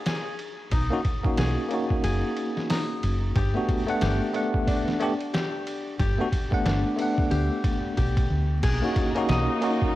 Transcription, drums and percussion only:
0.06 snare, ride
0.39 ride
0.71 kick, ride
1.05 kick, ride
1.24 kick
1.37 snare, ride
1.71 ride
1.90 kick
2.04 ride
2.37 ride
2.57 snare
2.70 snare, open hi-hat
3.03 ride
3.35 kick, ride
3.69 kick, ride
3.88 ride
4.01 snare, ride
4.35 ride
4.54 kick
4.67 kick, ride
4.88 snare
5.01 ride
5.20 ride
5.34 snare, ride
5.67 ride
5.99 kick, ride
6.32 kick, ride
6.52 kick
6.66 snare, ride
6.99 ride
7.18 kick
7.31 ride
7.64 kick, ride
7.97 kick, ride
8.17 kick, ride
8.63 kick, crash, ride
8.96 kick, ride
9.16 ride
9.29 snare, ride
9.62 ride
9.82 kick

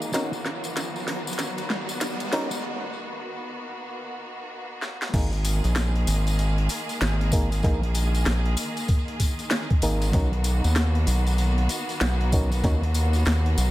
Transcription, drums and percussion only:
0.02 tambourine
0.13 snare, closed hi-hat, tambourine
0.33 tambourine
0.45 snare
0.64 closed hi-hat, tambourine
0.77 snare, closed hi-hat, tambourine
0.96 tambourine
1.08 snare, open hi-hat
1.27 tambourine
1.33 closed hi-hat
1.39 snare, closed hi-hat, tambourine
1.58 closed hi-hat, tambourine
1.70 snare
1.89 tambourine
2.01 snare, closed hi-hat, tambourine
2.20 closed hi-hat, tambourine
2.33 snare, open hi-hat
2.51 tambourine
4.82 snare
5.02 snare
5.14 kick, snare, open hi-hat, crash, tambourine
5.33 open hi-hat
5.45 open hi-hat, tambourine
5.64 open hi-hat, tambourine
5.76 snare, open hi-hat, tambourine
5.96 open hi-hat
6.07 open hi-hat, tambourine
6.27 open hi-hat, tambourine
6.39 open hi-hat, tambourine
6.58 open hi-hat
6.69 open hi-hat, tambourine
6.89 open hi-hat, tambourine
7.01 snare, open hi-hat, tambourine
7.21 open hi-hat
7.32 kick, open hi-hat, tambourine
7.52 open hi-hat, tambourine
7.63 kick, snare, open hi-hat, tambourine
7.83 open hi-hat
7.95 open hi-hat, tambourine
8.15 open hi-hat, tambourine
8.26 snare, open hi-hat, tambourine
8.46 open hi-hat
8.57 open hi-hat, tambourine
8.77 open hi-hat, tambourine
8.88 kick, open hi-hat, tambourine
9.08 open hi-hat
9.20 kick, open hi-hat, tambourine
9.39 open hi-hat, tambourine
9.51 snare, open hi-hat, tambourine
9.70 kick, open hi-hat
9.82 open hi-hat, tambourine
10.02 open hi-hat, tambourine
10.13 kick, snare, open hi-hat, tambourine
10.33 open hi-hat
10.44 open hi-hat, tambourine
10.64 open hi-hat, tambourine
10.76 snare, open hi-hat, tambourine
10.95 open hi-hat
11.07 open hi-hat, tambourine
11.27 open hi-hat, tambourine
11.38 open hi-hat, tambourine
11.58 open hi-hat
11.69 open hi-hat, tambourine
11.89 open hi-hat, tambourine
12.01 snare, open hi-hat, tambourine
12.21 open hi-hat
12.32 kick, open hi-hat, tambourine
12.52 open hi-hat, tambourine
12.64 kick, snare, open hi-hat, tambourine
12.83 open hi-hat
12.94 open hi-hat, tambourine
13.13 open hi-hat, tambourine
13.25 snare, open hi-hat, tambourine
13.46 open hi-hat
13.58 open hi-hat, tambourine

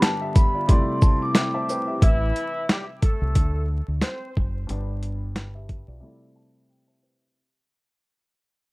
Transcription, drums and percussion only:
0.02 snare, closed hi-hat
0.36 kick, closed hi-hat, shaker
0.69 kick, closed hi-hat
1.02 kick, shaker
1.35 snare, closed hi-hat
1.69 shaker
2.02 kick, closed hi-hat
2.36 closed hi-hat
2.69 snare, closed hi-hat
3.02 kick, closed hi-hat
3.35 kick, closed hi-hat
4.01 snare, closed hi-hat
4.37 kick
4.69 closed hi-hat
5.03 closed hi-hat
5.36 snare, closed hi-hat
5.69 kick, closed hi-hat

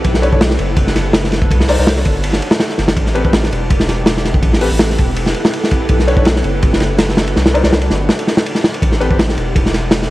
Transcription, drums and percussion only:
0.04 kick, ride
0.14 snare
0.23 ride
0.33 kick
0.41 snare, ride
0.50 snare
0.59 ride
0.76 kick, ride
0.87 snare
0.96 snare, ride
1.13 snare, ride
1.24 snare
1.32 snare, ride
1.42 kick
1.51 kick, ride
1.60 snare
1.69 open hi-hat
1.87 snare, ride
1.96 snare
2.05 kick, ride
2.24 ride
2.33 snare
2.42 ride
2.51 snare
2.60 snare, ride
2.69 snare
2.78 snare, ride
2.88 snare, ride
2.97 kick, ride
3.06 snare
3.15 ride
3.25 kick
3.33 snare, ride
3.43 snare
3.52 ride
3.70 kick, ride
3.80 snare
3.88 snare, ride
4.06 snare, ride
4.17 snare
4.25 snare, ride
4.34 kick
4.43 kick, ride
4.53 snare
4.61 open hi-hat
4.79 snare, ride
4.90 snare
4.98 kick, ride
5.16 ride
5.26 snare
5.34 ride
5.45 snare
5.53 ride
5.64 snare
5.71 kick, ride
5.89 kick, ride
5.99 snare
6.08 ride
6.17 kick
6.25 snare, ride
6.36 snare
6.44 ride
6.63 kick, ride
6.73 snare
6.80 snare, ride
6.98 snare, ride
7.09 snare
7.17 snare
7.27 ride
7.36 snare
7.46 snare
7.55 ride
7.64 snare
7.73 snare
7.82 ride
7.90 snare
8.09 snare
8.19 ride
8.27 snare
8.37 snare
8.46 ride
8.55 snare
8.64 snare
8.74 ride
8.82 kick, ride
8.92 snare
9.01 ride
9.11 kick
9.19 snare, ride
9.29 snare
9.38 ride
9.56 kick, ride
9.66 snare
9.74 snare, ride
9.91 snare, ride
10.02 snare

